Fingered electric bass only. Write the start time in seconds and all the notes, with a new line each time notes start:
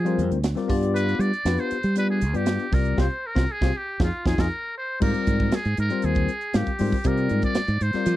Already playing: F3
0.18 F2
0.31 D2
0.69 G2
1.19 G3
1.45 F2
1.72 muted fingered electric bass stroke
1.84 G3
2.22 D2
2.34 G2
2.72 C2
2.98 C2
3.36 C2
3.61 C2
4.00 F2
4.25 F2
4.38 F2
5.02 G#2
5.27 G#2
5.66 G#2
5.78 G#2
6.04 D#2
6.55 G#2
6.67 muted fingered electric bass stroke
6.81 G#2
7.05 C3
7.31 G#2
7.56 muted fingered electric bass stroke
7.68 G#2
7.81 G#2
7.95 muted fingered electric bass stroke
8.06 F3